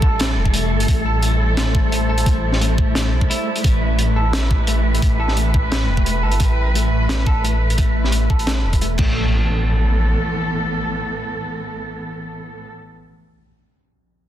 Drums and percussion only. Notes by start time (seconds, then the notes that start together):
0.02 kick
0.20 snare, closed hi-hat
0.45 kick
0.54 closed hi-hat
0.80 closed hi-hat
0.88 kick, closed hi-hat
1.23 closed hi-hat
1.57 snare, closed hi-hat
1.75 kick
1.92 closed hi-hat
2.18 closed hi-hat
2.26 kick, closed hi-hat
2.52 snare
2.61 closed hi-hat
2.78 kick
2.95 snare, closed hi-hat
3.21 kick
3.31 closed hi-hat
3.56 closed hi-hat
3.64 kick, closed hi-hat
3.99 closed hi-hat
4.33 snare, closed hi-hat
4.51 kick
4.67 closed hi-hat
4.95 closed hi-hat
5.02 kick, closed hi-hat
5.28 snare
5.37 closed hi-hat
5.54 kick
5.72 snare, closed hi-hat
5.97 kick
6.06 closed hi-hat
6.32 closed hi-hat
6.40 kick, closed hi-hat
6.75 closed hi-hat
7.09 snare, closed hi-hat
7.26 kick
7.45 closed hi-hat
7.70 closed hi-hat
7.78 kick, closed hi-hat
8.04 snare
8.12 closed hi-hat
8.30 kick
8.39 closed hi-hat
8.47 snare, closed hi-hat
8.73 kick, closed hi-hat
8.81 closed hi-hat
8.98 kick, crash